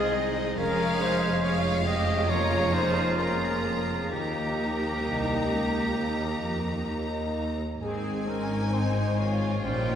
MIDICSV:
0, 0, Header, 1, 12, 480
1, 0, Start_track
1, 0, Key_signature, -4, "major"
1, 0, Tempo, 865801
1, 328, Time_signature, 4, 2, 24, 8
1, 1770, Tempo, 927357
1, 4170, Tempo, 903614
1, 5298, End_track
2, 0, Start_track
2, 0, Title_t, "Violin section"
2, 0, Program_c, 0, 48
2, 0, Note_on_c, 0, 75, 81
2, 302, Note_off_c, 0, 75, 0
2, 321, Note_on_c, 0, 77, 99
2, 775, Note_off_c, 0, 77, 0
2, 800, Note_on_c, 0, 77, 94
2, 1267, Note_off_c, 0, 77, 0
2, 1269, Note_on_c, 0, 82, 80
2, 1754, Note_off_c, 0, 82, 0
2, 1760, Note_on_c, 0, 82, 70
2, 2236, Note_off_c, 0, 82, 0
2, 2247, Note_on_c, 0, 82, 73
2, 4041, Note_off_c, 0, 82, 0
2, 4166, Note_on_c, 0, 80, 77
2, 5107, Note_off_c, 0, 80, 0
2, 5132, Note_on_c, 0, 79, 75
2, 5298, Note_off_c, 0, 79, 0
2, 5298, End_track
3, 0, Start_track
3, 0, Title_t, "Flute section"
3, 0, Program_c, 1, 73
3, 0, Note_on_c, 1, 68, 105
3, 174, Note_off_c, 1, 68, 0
3, 315, Note_on_c, 1, 70, 108
3, 555, Note_off_c, 1, 70, 0
3, 564, Note_on_c, 1, 72, 92
3, 797, Note_on_c, 1, 73, 108
3, 800, Note_off_c, 1, 72, 0
3, 1035, Note_off_c, 1, 73, 0
3, 1035, Note_on_c, 1, 75, 99
3, 1276, Note_off_c, 1, 75, 0
3, 1278, Note_on_c, 1, 73, 91
3, 1519, Note_on_c, 1, 72, 91
3, 1523, Note_off_c, 1, 73, 0
3, 1763, Note_off_c, 1, 72, 0
3, 1766, Note_on_c, 1, 70, 75
3, 2005, Note_off_c, 1, 70, 0
3, 2008, Note_on_c, 1, 68, 83
3, 2249, Note_on_c, 1, 67, 79
3, 2251, Note_off_c, 1, 68, 0
3, 3907, Note_off_c, 1, 67, 0
3, 4170, Note_on_c, 1, 68, 92
3, 4397, Note_off_c, 1, 68, 0
3, 4408, Note_on_c, 1, 70, 79
3, 4647, Note_off_c, 1, 70, 0
3, 4650, Note_on_c, 1, 72, 78
3, 4889, Note_on_c, 1, 73, 80
3, 4890, Note_off_c, 1, 72, 0
3, 5126, Note_on_c, 1, 72, 90
3, 5129, Note_off_c, 1, 73, 0
3, 5298, Note_off_c, 1, 72, 0
3, 5298, End_track
4, 0, Start_track
4, 0, Title_t, "Trumpet"
4, 0, Program_c, 2, 56
4, 0, Note_on_c, 2, 68, 122
4, 175, Note_off_c, 2, 68, 0
4, 321, Note_on_c, 2, 70, 117
4, 562, Note_on_c, 2, 72, 102
4, 570, Note_off_c, 2, 70, 0
4, 797, Note_on_c, 2, 73, 120
4, 805, Note_off_c, 2, 72, 0
4, 1026, Note_off_c, 2, 73, 0
4, 1030, Note_on_c, 2, 75, 115
4, 1275, Note_on_c, 2, 73, 123
4, 1284, Note_off_c, 2, 75, 0
4, 1521, Note_on_c, 2, 72, 114
4, 1529, Note_off_c, 2, 73, 0
4, 1769, Note_on_c, 2, 70, 96
4, 1777, Note_off_c, 2, 72, 0
4, 2008, Note_on_c, 2, 68, 95
4, 2015, Note_off_c, 2, 70, 0
4, 2244, Note_off_c, 2, 68, 0
4, 2247, Note_on_c, 2, 67, 90
4, 3906, Note_off_c, 2, 67, 0
4, 4166, Note_on_c, 2, 68, 98
4, 4412, Note_on_c, 2, 70, 90
4, 4420, Note_off_c, 2, 68, 0
4, 4648, Note_on_c, 2, 72, 95
4, 4656, Note_off_c, 2, 70, 0
4, 4893, Note_on_c, 2, 73, 95
4, 4901, Note_off_c, 2, 72, 0
4, 5128, Note_off_c, 2, 73, 0
4, 5132, Note_on_c, 2, 72, 107
4, 5298, Note_off_c, 2, 72, 0
4, 5298, End_track
5, 0, Start_track
5, 0, Title_t, "Oboe"
5, 0, Program_c, 3, 68
5, 0, Note_on_c, 3, 65, 92
5, 75, Note_on_c, 3, 63, 84
5, 84, Note_off_c, 3, 65, 0
5, 321, Note_on_c, 3, 61, 102
5, 329, Note_off_c, 3, 63, 0
5, 1123, Note_off_c, 3, 61, 0
5, 1273, Note_on_c, 3, 65, 109
5, 2227, Note_off_c, 3, 65, 0
5, 2247, Note_on_c, 3, 67, 90
5, 3906, Note_off_c, 3, 67, 0
5, 5132, Note_on_c, 3, 65, 87
5, 5298, Note_off_c, 3, 65, 0
5, 5298, End_track
6, 0, Start_track
6, 0, Title_t, "Harp"
6, 0, Program_c, 4, 46
6, 0, Note_on_c, 4, 48, 68
6, 0, Note_on_c, 4, 56, 59
6, 0, Note_on_c, 4, 68, 65
6, 0, Note_on_c, 4, 75, 76
6, 81, Note_off_c, 4, 68, 0
6, 88, Note_on_c, 4, 68, 60
6, 326, Note_on_c, 4, 53, 77
6, 345, Note_off_c, 4, 75, 0
6, 346, Note_off_c, 4, 48, 0
6, 557, Note_off_c, 4, 56, 0
6, 564, Note_on_c, 4, 56, 74
6, 796, Note_on_c, 4, 73, 72
6, 1023, Note_off_c, 4, 68, 0
6, 1030, Note_on_c, 4, 68, 76
6, 1267, Note_off_c, 4, 53, 0
6, 1274, Note_on_c, 4, 53, 76
6, 1516, Note_on_c, 4, 58, 56
6, 1762, Note_off_c, 4, 73, 0
6, 1999, Note_off_c, 4, 68, 0
6, 2005, Note_on_c, 4, 68, 58
6, 2246, Note_on_c, 4, 51, 66
6, 2268, Note_off_c, 4, 53, 0
6, 2269, Note_off_c, 4, 56, 0
6, 2269, Note_off_c, 4, 68, 0
6, 2483, Note_off_c, 4, 58, 0
6, 2490, Note_on_c, 4, 58, 55
6, 2730, Note_on_c, 4, 75, 57
6, 2969, Note_on_c, 4, 70, 51
6, 3206, Note_on_c, 4, 63, 48
6, 3438, Note_off_c, 4, 58, 0
6, 3444, Note_on_c, 4, 58, 43
6, 3679, Note_off_c, 4, 75, 0
6, 3685, Note_on_c, 4, 75, 47
6, 3917, Note_off_c, 4, 70, 0
6, 3923, Note_on_c, 4, 70, 46
6, 4169, Note_on_c, 4, 44, 66
6, 4188, Note_off_c, 4, 70, 0
6, 4189, Note_off_c, 4, 51, 0
6, 4189, Note_off_c, 4, 58, 0
6, 4412, Note_on_c, 4, 60, 57
6, 4646, Note_off_c, 4, 75, 0
6, 4653, Note_on_c, 4, 75, 68
6, 4891, Note_on_c, 4, 68, 64
6, 5131, Note_on_c, 4, 46, 74
6, 5149, Note_off_c, 4, 60, 0
6, 5149, Note_off_c, 4, 68, 0
6, 5150, Note_off_c, 4, 44, 0
6, 5253, Note_off_c, 4, 63, 0
6, 5298, Note_off_c, 4, 46, 0
6, 5298, Note_off_c, 4, 75, 0
6, 5298, End_track
7, 0, Start_track
7, 0, Title_t, "Violin section"
7, 0, Program_c, 5, 48
7, 0, Note_on_c, 5, 60, 97
7, 323, Note_on_c, 5, 61, 109
7, 328, Note_off_c, 5, 60, 0
7, 563, Note_off_c, 5, 61, 0
7, 567, Note_on_c, 5, 63, 92
7, 802, Note_off_c, 5, 63, 0
7, 802, Note_on_c, 5, 65, 99
7, 1032, Note_off_c, 5, 65, 0
7, 1036, Note_on_c, 5, 67, 105
7, 1268, Note_on_c, 5, 65, 111
7, 1272, Note_off_c, 5, 67, 0
7, 1518, Note_off_c, 5, 65, 0
7, 1523, Note_on_c, 5, 63, 95
7, 1769, Note_on_c, 5, 61, 80
7, 1770, Note_off_c, 5, 63, 0
7, 2006, Note_off_c, 5, 61, 0
7, 2007, Note_on_c, 5, 60, 75
7, 2250, Note_off_c, 5, 60, 0
7, 2253, Note_on_c, 5, 58, 76
7, 3908, Note_off_c, 5, 58, 0
7, 4173, Note_on_c, 5, 60, 74
7, 4399, Note_off_c, 5, 60, 0
7, 4413, Note_on_c, 5, 61, 84
7, 4654, Note_off_c, 5, 61, 0
7, 4655, Note_on_c, 5, 63, 76
7, 4893, Note_off_c, 5, 63, 0
7, 4893, Note_on_c, 5, 65, 86
7, 5132, Note_off_c, 5, 65, 0
7, 5133, Note_on_c, 5, 63, 107
7, 5298, Note_off_c, 5, 63, 0
7, 5298, End_track
8, 0, Start_track
8, 0, Title_t, "French horn section"
8, 0, Program_c, 6, 60
8, 0, Note_on_c, 6, 56, 70
8, 0, Note_on_c, 6, 63, 66
8, 308, Note_off_c, 6, 63, 0
8, 327, Note_on_c, 6, 61, 81
8, 1171, Note_off_c, 6, 56, 0
8, 1265, Note_on_c, 6, 58, 73
8, 2229, Note_off_c, 6, 61, 0
8, 2246, Note_on_c, 6, 63, 62
8, 3971, Note_off_c, 6, 58, 0
8, 4167, Note_on_c, 6, 60, 62
8, 5108, Note_off_c, 6, 60, 0
8, 5108, Note_off_c, 6, 63, 0
8, 5129, Note_on_c, 6, 63, 67
8, 5134, Note_on_c, 6, 61, 72
8, 5298, Note_off_c, 6, 61, 0
8, 5298, Note_off_c, 6, 63, 0
8, 5298, End_track
9, 0, Start_track
9, 0, Title_t, "Viola section"
9, 0, Program_c, 7, 48
9, 0, Note_on_c, 7, 56, 84
9, 0, Note_on_c, 7, 68, 84
9, 304, Note_off_c, 7, 56, 0
9, 304, Note_off_c, 7, 68, 0
9, 319, Note_on_c, 7, 56, 94
9, 319, Note_on_c, 7, 68, 98
9, 775, Note_off_c, 7, 56, 0
9, 775, Note_off_c, 7, 68, 0
9, 795, Note_on_c, 7, 68, 76
9, 797, Note_on_c, 7, 56, 83
9, 1265, Note_off_c, 7, 68, 0
9, 1266, Note_off_c, 7, 56, 0
9, 1274, Note_on_c, 7, 58, 85
9, 1275, Note_on_c, 7, 68, 90
9, 1759, Note_off_c, 7, 68, 0
9, 1762, Note_off_c, 7, 58, 0
9, 1768, Note_on_c, 7, 68, 76
9, 1769, Note_on_c, 7, 58, 74
9, 2240, Note_off_c, 7, 58, 0
9, 2240, Note_off_c, 7, 68, 0
9, 2250, Note_on_c, 7, 58, 84
9, 2250, Note_on_c, 7, 63, 79
9, 4042, Note_off_c, 7, 58, 0
9, 4042, Note_off_c, 7, 63, 0
9, 4172, Note_on_c, 7, 51, 73
9, 4174, Note_on_c, 7, 60, 73
9, 4285, Note_off_c, 7, 51, 0
9, 4291, Note_on_c, 7, 56, 67
9, 4399, Note_off_c, 7, 60, 0
9, 4405, Note_on_c, 7, 60, 64
9, 4414, Note_off_c, 7, 56, 0
9, 4529, Note_on_c, 7, 63, 62
9, 4531, Note_off_c, 7, 60, 0
9, 4649, Note_on_c, 7, 60, 72
9, 4652, Note_off_c, 7, 63, 0
9, 4764, Note_on_c, 7, 56, 64
9, 4771, Note_off_c, 7, 60, 0
9, 4883, Note_on_c, 7, 51, 68
9, 4888, Note_off_c, 7, 56, 0
9, 5007, Note_off_c, 7, 51, 0
9, 5009, Note_on_c, 7, 56, 70
9, 5126, Note_on_c, 7, 61, 72
9, 5128, Note_on_c, 7, 55, 71
9, 5130, Note_off_c, 7, 56, 0
9, 5240, Note_off_c, 7, 55, 0
9, 5249, Note_on_c, 7, 58, 66
9, 5298, Note_off_c, 7, 58, 0
9, 5298, Note_off_c, 7, 61, 0
9, 5298, End_track
10, 0, Start_track
10, 0, Title_t, "Trombone section"
10, 0, Program_c, 8, 61
10, 0, Note_on_c, 8, 51, 72
10, 0, Note_on_c, 8, 56, 75
10, 306, Note_off_c, 8, 51, 0
10, 318, Note_on_c, 8, 53, 87
10, 1181, Note_off_c, 8, 56, 0
10, 1276, Note_on_c, 8, 56, 78
10, 2230, Note_off_c, 8, 56, 0
10, 2248, Note_on_c, 8, 58, 70
10, 2722, Note_on_c, 8, 51, 65
10, 2728, Note_off_c, 8, 53, 0
10, 3976, Note_off_c, 8, 58, 0
10, 4164, Note_on_c, 8, 56, 68
10, 5107, Note_off_c, 8, 56, 0
10, 5126, Note_off_c, 8, 51, 0
10, 5136, Note_on_c, 8, 51, 72
10, 5139, Note_on_c, 8, 55, 78
10, 5298, Note_off_c, 8, 51, 0
10, 5298, Note_off_c, 8, 55, 0
10, 5298, End_track
11, 0, Start_track
11, 0, Title_t, "Cello section"
11, 0, Program_c, 10, 48
11, 0, Note_on_c, 10, 36, 64
11, 302, Note_off_c, 10, 36, 0
11, 326, Note_on_c, 10, 41, 81
11, 2229, Note_off_c, 10, 41, 0
11, 2252, Note_on_c, 10, 39, 65
11, 2677, Note_off_c, 10, 39, 0
11, 2730, Note_on_c, 10, 36, 80
11, 2955, Note_off_c, 10, 36, 0
11, 2974, Note_on_c, 10, 37, 65
11, 3211, Note_on_c, 10, 39, 73
11, 3212, Note_off_c, 10, 37, 0
11, 3442, Note_on_c, 10, 41, 66
11, 3447, Note_off_c, 10, 39, 0
11, 3676, Note_on_c, 10, 39, 61
11, 3677, Note_off_c, 10, 41, 0
11, 4165, Note_on_c, 10, 44, 76
11, 4166, Note_off_c, 10, 39, 0
11, 5107, Note_off_c, 10, 44, 0
11, 5130, Note_on_c, 10, 46, 74
11, 5298, Note_off_c, 10, 46, 0
11, 5298, End_track
12, 0, Start_track
12, 0, Title_t, "Double bass section"
12, 0, Program_c, 11, 48
12, 0, Note_on_c, 11, 36, 65
12, 305, Note_off_c, 11, 36, 0
12, 322, Note_on_c, 11, 29, 83
12, 2226, Note_off_c, 11, 29, 0
12, 2244, Note_on_c, 11, 39, 65
12, 4039, Note_off_c, 11, 39, 0
12, 4172, Note_on_c, 11, 32, 68
12, 5110, Note_off_c, 11, 32, 0
12, 5129, Note_on_c, 11, 34, 81
12, 5298, Note_off_c, 11, 34, 0
12, 5298, End_track
0, 0, End_of_file